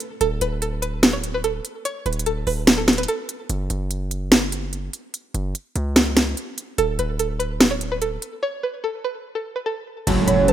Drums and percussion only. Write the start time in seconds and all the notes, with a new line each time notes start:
0.00 closed hi-hat
0.21 closed hi-hat
0.41 closed hi-hat
0.62 closed hi-hat
0.82 closed hi-hat
1.03 snare, closed hi-hat
1.24 closed hi-hat
1.44 closed hi-hat
1.65 closed hi-hat
1.85 closed hi-hat
2.06 closed hi-hat
2.13 closed hi-hat
2.19 closed hi-hat
2.26 closed hi-hat
2.47 open hi-hat
2.67 snare, closed hi-hat
2.88 snare, closed hi-hat
2.93 closed hi-hat
2.98 closed hi-hat
3.03 closed hi-hat
3.08 closed hi-hat
3.29 closed hi-hat
3.49 closed hi-hat
3.70 closed hi-hat
3.91 closed hi-hat
4.11 closed hi-hat
4.32 snare, closed hi-hat
4.52 closed hi-hat
4.73 closed hi-hat
4.93 closed hi-hat
5.14 closed hi-hat
5.34 closed hi-hat
5.55 closed hi-hat
5.76 closed hi-hat
5.96 snare, closed hi-hat
6.17 snare, closed hi-hat
6.37 closed hi-hat
6.58 closed hi-hat
6.78 closed hi-hat
6.99 closed hi-hat
7.19 closed hi-hat
7.40 closed hi-hat
7.61 snare, closed hi-hat
7.81 closed hi-hat
8.02 closed hi-hat
8.22 closed hi-hat
10.07 closed hi-hat, crash
10.28 closed hi-hat
10.48 closed hi-hat